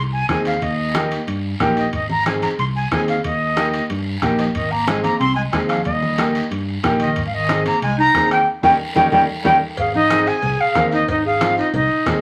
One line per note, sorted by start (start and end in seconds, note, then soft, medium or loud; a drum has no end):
0.00 0.22 C2 medium
0.13 0.28 G#5 medium
0.29 0.55 D#2 medium
0.29 0.52 C4 medium
0.29 0.52 D#4 medium
0.29 0.53 G#4 medium
0.29 0.44 G#5 loud
0.29 bombo low medium
0.29 bombo rim medium
0.29 high conga medium
0.29 high timbale medium
0.29 low timbale medium
0.29 short guiro medium
0.45 0.64 F5 medium
0.45 high timbale medium
0.45 short guiro medium
0.62 1.14 D#2 loud
0.62 1.28 D#5 medium
0.62 bombo low medium
0.62 high conga soft
0.62 high timbale medium
0.62 long guiro medium
0.95 1.18 A#3 medium
0.95 1.18 D#4 medium
0.95 1.18 G4 medium
0.95 bombo rim medium
0.95 high conga loud
0.95 high timbale medium
0.95 short guiro medium
1.11 high timbale medium
1.11 short guiro medium
1.27 1.54 G2 medium
1.27 high conga soft
1.27 high timbale medium
1.27 long guiro medium
1.60 1.87 A#1 medium
1.60 1.83 A#3 medium
1.60 1.83 D#4 medium
1.60 1.84 G4 medium
1.60 bombo low medium
1.60 bombo rim medium
1.60 high conga medium
1.60 high timbale medium
1.60 low timbale medium
1.60 short guiro medium
1.77 1.92 D#5 medium
1.77 high timbale medium
1.77 short guiro medium
1.93 2.45 G#1 loud
1.93 2.09 D#5 medium
1.93 bombo low medium
1.93 high conga soft
1.93 high timbale medium
1.93 long guiro medium
2.10 2.25 A#5 medium
2.10 high conga medium
2.26 2.49 C4 medium
2.26 2.49 D#4 medium
2.26 2.49 G#4 medium
2.26 2.32 G#5 medium
2.26 bombo rim medium
2.26 high conga medium
2.26 high timbale medium
2.26 short guiro medium
2.42 2.48 A#5 medium
2.42 high conga medium
2.42 high timbale medium
2.42 short guiro medium
2.59 2.85 C2 loud
2.59 2.65 C6 loud
2.59 high conga soft
2.59 high timbale medium
2.59 long guiro medium
2.76 2.91 G#5 medium
2.91 3.18 D#2 medium
2.91 3.14 C4 medium
2.91 3.15 D#4 medium
2.91 3.15 G#4 medium
2.91 3.07 G#5 loud
2.91 bombo low medium
2.91 bombo rim medium
2.91 high conga medium
2.91 high timbale medium
2.91 low timbale medium
2.91 short guiro medium
3.08 3.23 F5 medium
3.08 high timbale medium
3.08 short guiro medium
3.24 3.77 D#2 loud
3.24 3.86 D#5 medium
3.24 bombo low medium
3.24 high conga soft
3.24 high timbale medium
3.24 long guiro medium
3.56 3.80 A#3 medium
3.56 3.80 D#4 medium
3.56 3.80 G4 medium
3.56 bombo rim medium
3.56 high conga medium
3.56 high timbale medium
3.56 short guiro medium
3.74 high timbale medium
3.74 short guiro medium
3.90 4.16 G2 medium
3.90 high conga soft
3.90 high timbale medium
3.90 long guiro medium
4.22 4.48 A#1 loud
4.22 4.45 A#3 medium
4.22 4.45 D#4 medium
4.22 4.45 G4 medium
4.22 bombo low medium
4.22 bombo rim medium
4.22 high conga medium
4.22 high timbale medium
4.22 short guiro medium
4.38 4.46 F3 medium
4.38 4.44 D#5 medium
4.38 high timbale medium
4.38 short guiro medium
4.54 5.07 G#1 loud
4.54 4.72 D#3 medium
4.54 4.72 D#5 medium
4.54 bombo low medium
4.54 high conga soft
4.54 high timbale medium
4.54 long guiro medium
4.71 4.88 A#3 medium
4.71 4.89 A#5 medium
4.87 5.02 G#3 medium
4.87 5.10 C4 medium
4.87 5.11 D#4 medium
4.87 5.11 G#4 medium
4.87 5.02 G#5 medium
4.87 bombo rim medium
4.87 high conga medium
4.87 high timbale medium
4.87 short guiro medium
5.03 5.19 A#3 medium
5.03 5.18 A#5 medium
5.03 high conga medium
5.03 high timbale medium
5.03 short guiro medium
5.19 5.46 C2 medium
5.19 5.35 C4 loud
5.19 5.35 C6 loud
5.19 high conga soft
5.19 high timbale medium
5.19 long guiro medium
5.35 5.43 G#3 medium
5.35 5.41 G#5 medium
5.51 5.79 D#2 medium
5.51 5.59 G#3 medium
5.51 5.76 C4 medium
5.51 5.76 D#4 medium
5.51 5.76 G#4 medium
5.51 5.58 G#5 medium
5.51 bombo low medium
5.51 bombo rim medium
5.51 high conga medium
5.51 high timbale medium
5.51 low timbale medium
5.51 short guiro medium
5.68 5.84 F3 medium
5.68 5.84 F5 medium
5.68 bombo rim medium
5.68 high timbale medium
5.68 short guiro medium
5.85 6.38 D#2 medium
5.85 6.47 G3 medium
5.85 6.47 D#5 medium
5.85 bombo low medium
5.85 high conga soft
5.85 high timbale medium
5.85 long guiro medium
6.02 high conga medium
6.18 6.41 A#3 medium
6.18 6.41 D#4 medium
6.18 6.42 G4 medium
6.18 bombo rim medium
6.18 high conga medium
6.18 high timbale medium
6.18 short guiro medium
6.35 high timbale medium
6.35 short guiro medium
6.51 6.77 G2 medium
6.51 high timbale medium
6.51 long guiro medium
6.83 7.10 A#1 medium
6.83 7.06 A#3 medium
6.83 7.07 D#4 medium
6.83 7.07 G4 medium
6.83 bombo low medium
6.83 bombo rim medium
6.83 high conga medium
6.83 high timbale medium
6.83 short guiro medium
7.00 7.24 D#3 medium
7.00 7.24 D#5 medium
7.00 high timbale medium
7.00 short guiro medium
7.16 7.69 G#1 loud
7.16 bombo low medium
7.16 high conga soft
7.16 high timbale medium
7.16 long guiro medium
7.26 7.35 G#3 medium
7.26 7.35 F5 medium
7.34 7.66 D#3 medium
7.34 7.66 D#5 medium
7.49 7.72 C4 medium
7.49 7.72 D#4 medium
7.49 7.72 G#4 medium
7.49 bombo rim medium
7.49 high conga medium
7.49 high timbale medium
7.49 short guiro medium
7.66 7.81 A#3 medium
7.66 7.81 A#5 medium
7.66 high conga medium
7.66 high timbale medium
7.66 short guiro medium
7.82 8.08 C2 medium
7.82 7.97 G#3 loud
7.82 7.97 G#5 loud
7.82 high conga soft
7.82 high timbale medium
7.82 long guiro medium
7.98 8.28 D#4 medium
7.98 8.29 A#5 loud
8.14 8.41 D#2 medium
8.14 8.37 C4 medium
8.14 8.37 D#4 medium
8.14 8.38 G#4 medium
8.14 bombo low medium
8.14 bombo rim medium
8.14 high conga medium
8.14 high timbale medium
8.14 low timbale medium
8.14 short guiro medium
8.31 8.46 A#3 medium
8.31 8.46 G5 medium
8.31 bombo rim medium
8.31 high timbale medium
8.31 short guiro medium
8.62 8.75 D#2 medium
8.62 8.71 G3 medium
8.62 8.74 C#4 medium
8.62 8.74 D#4 medium
8.62 8.74 G4 medium
8.62 8.74 G5 medium
8.62 bombo low medium
8.62 high conga medium
8.62 high timbale medium
8.62 long guiro medium
8.95 9.08 D#2 medium
8.95 9.03 G3 loud
8.95 9.07 C#4 medium
8.95 9.07 D#4 medium
8.95 9.07 G4 medium
8.95 9.06 G5 medium
8.95 bombo low loud
8.95 high conga medium
8.95 high timbale medium
8.95 long guiro medium
9.12 9.24 D#2 loud
9.12 9.21 G3 loud
9.12 9.23 C#4 medium
9.12 9.23 D#4 medium
9.12 9.23 G4 medium
9.12 9.23 G5 medium
9.12 bombo low loud
9.12 high conga medium
9.12 high timbale medium
9.12 long guiro loud
9.44 9.57 D#2 medium
9.44 9.52 G3 loud
9.44 9.55 C#4 medium
9.44 9.55 D#4 medium
9.44 9.55 G4 medium
9.44 9.55 G5 medium
9.44 bombo low medium
9.44 high conga loud
9.44 high timbale medium
9.44 long guiro medium
9.77 10.30 G#1 loud
9.77 9.93 G#4 medium
9.77 9.93 F5 medium
9.77 bombo low medium
9.77 cowbell loud
9.77 high conga soft
9.77 long guiro medium
9.94 10.29 D#4 medium
9.94 10.29 D#5 loud
9.94 high conga medium
10.10 10.33 C4 medium
10.10 10.33 D#4 medium
10.10 10.34 G#4 medium
10.10 bombo rim medium
10.10 cowbell medium
10.10 high conga loud
10.10 short guiro medium
10.26 10.60 G#4 medium
10.26 10.62 G#5 loud
10.26 short guiro medium
10.42 10.56 C2 loud
10.42 cowbell medium
10.42 high conga soft
10.42 low conga medium
10.42 long guiro medium
10.60 10.92 G#4 medium
10.60 10.92 F5 loud
10.75 11.02 D#2 loud
10.75 10.98 C4 medium
10.75 10.98 D#4 medium
10.75 10.99 A#4 medium
10.75 bombo low medium
10.75 bombo rim medium
10.75 cowbell medium
10.75 high conga medium
10.75 short guiro medium
10.92 11.08 D#4 medium
10.92 11.08 D#5 medium
10.92 short guiro medium
11.08 11.60 G#1 medium
11.08 11.24 D#4 medium
11.08 11.24 D#5 medium
11.08 bombo low medium
11.08 cowbell medium
11.08 high conga soft
11.08 long guiro medium
11.25 11.55 G#4 medium
11.25 11.56 F5 loud
11.41 11.64 C4 medium
11.41 11.64 D#4 medium
11.41 11.64 F4 medium
11.41 bombo rim medium
11.41 cowbell medium
11.41 high conga loud
11.41 short guiro medium
11.57 11.73 D#4 medium
11.57 11.73 D#5 medium
11.57 short guiro medium
11.73 11.87 C2 medium
11.73 12.20 D#4 medium
11.73 12.20 D#5 medium
11.73 cowbell medium
11.73 high conga soft
11.73 low conga medium
11.73 long guiro medium
12.06 12.21 D#2 medium
12.06 12.21 C4 medium
12.06 12.21 D#4 medium
12.06 12.21 G#4 medium
12.06 bombo low medium
12.06 bombo rim medium
12.06 cowbell medium
12.06 high conga medium
12.06 low conga medium
12.06 low timbale medium
12.06 short guiro medium